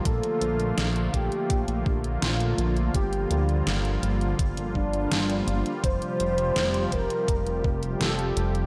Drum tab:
HH |xxxxxxxxxx-xxxxx|xxxxxxxxxx-xxxxx|xxxxxxxxxx-xxxxx|
SD |----o-------o---|----o-------o---|----o-------o---|
BD |o-----o-o-o-----|o-------o-o-----|o-----o-o-o-----|